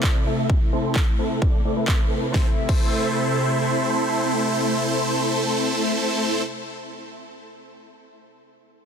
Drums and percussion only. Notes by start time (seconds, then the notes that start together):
0.03 kick, clap
0.50 kick
0.96 kick, clap
1.42 kick
1.88 kick, clap
2.34 kick, snare
2.69 kick, crash